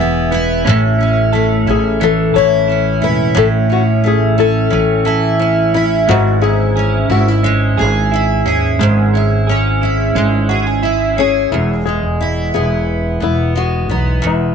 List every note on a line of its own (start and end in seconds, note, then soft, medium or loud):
0.00 0.61 E1 medium
0.00 0.66 E2 medium
0.00 2.01 E3 medium
0.00 0.72 G#3 medium
0.00 0.30 B3 medium
0.00 0.73 B3 medium
0.00 0.32 E4 medium
0.00 1.66 E4 medium
0.00 0.72 G#4 medium
0.31 0.64 B3 medium
0.31 2.35 E4 medium
0.65 1.63 A1 loud
0.65 3.33 A2 loud
0.65 0.98 C#4 medium
0.98 2.00 C#4 medium
0.98 1.67 C#4 medium
1.33 4.03 A3 medium
1.33 2.33 A4 medium
1.66 2.31 A1 loud
1.66 2.69 C#4 medium
1.66 2.67 E4 medium
1.71 2.03 G#4 medium
2.00 4.70 E3 medium
2.00 3.01 C#4 medium
2.00 2.36 A4 loud
2.34 2.99 A1 loud
2.34 3.01 E4 medium
2.34 4.04 A4 medium
2.34 3.04 C#5 loud
2.68 3.69 C#4 medium
2.68 4.38 E4 medium
3.02 3.34 E1 medium
3.02 3.35 C#4 medium
3.02 5.05 E4 medium
3.02 3.38 B4 medium
3.35 4.68 A1 loud
3.35 6.07 A2 medium
3.35 3.70 C#4 medium
3.35 3.47 A4 loud
3.70 4.37 C#4 soft
3.70 4.71 C#4 medium
3.70 3.81 F#4 medium
4.04 6.14 A3 medium
4.04 4.39 G#4 loud
4.38 5.39 C#4 medium
4.38 5.40 E4 medium
4.38 5.71 A4 loud
4.70 6.04 A1 loud
4.70 7.44 E3 medium
4.70 5.74 C#4 medium
5.05 5.74 E4 medium
5.05 6.15 A4 medium
5.39 6.41 C#4 medium
5.39 7.09 E4 medium
5.74 6.41 C#4 medium
5.74 6.42 E4 medium
5.74 5.84 E4 medium
6.08 7.06 G#1 loud
6.08 8.80 G#2 loud
6.08 8.79 G#3 medium
6.08 6.42 F#4 medium
6.42 7.42 C#4 medium
6.42 7.09 E4 medium
6.42 7.11 G#4 medium
6.76 9.48 C#4 medium
6.76 7.77 G#4 medium
7.10 7.74 G#1 medium
7.10 8.11 E4 soft
7.10 8.13 E4 medium
7.10 7.28 F#4 medium
7.28 10.84 E4 medium
7.43 10.16 G#3 medium
7.43 8.44 C#4 medium
7.77 8.42 G#1 loud
7.77 9.47 G#4 medium
7.77 8.45 G#4 medium
8.12 9.81 E4 medium
8.12 9.15 E4 medium
8.46 8.77 D#2 medium
8.46 9.12 C#4 medium
8.46 10.49 G#4 medium
8.79 10.11 G#1 loud
8.79 11.52 G#2 loud
8.79 12.09 G#3 medium
9.14 10.14 C#4 medium
9.14 9.83 E4 medium
9.47 11.59 C#4 medium
9.47 10.49 G#4 medium
9.82 10.82 E4 medium
9.82 10.83 E4 medium
10.15 11.47 G#1 loud
10.15 11.87 G#3 medium
10.15 11.16 C#4 medium
10.49 10.67 F#4 medium
10.49 11.18 G#4 medium
10.67 11.59 G#4 medium
10.83 12.08 E4 medium
10.83 12.21 E4 medium
11.17 11.58 C#4 medium
11.17 11.53 C#4 medium
11.17 12.20 G#4 medium
11.52 11.99 E1 medium
11.52 14.21 E2 medium
11.52 11.85 E4 medium
11.85 13.54 G#3 soft
11.85 12.53 G#4 medium
12.03 12.50 E1 medium
12.21 14.55 E4 medium
12.54 13.19 E1 medium
12.54 13.20 B3 medium
12.54 13.23 G#4 medium
13.20 13.91 E1 medium
13.20 13.89 B3 soft
13.20 13.57 E4 medium
13.55 14.55 G#3 medium
13.55 13.92 F#4 medium
13.89 14.22 B1 medium
13.89 14.55 B3 soft
13.89 14.22 D#4 medium
14.22 14.55 E1 medium
14.22 14.55 E2 medium
14.27 14.55 E4 medium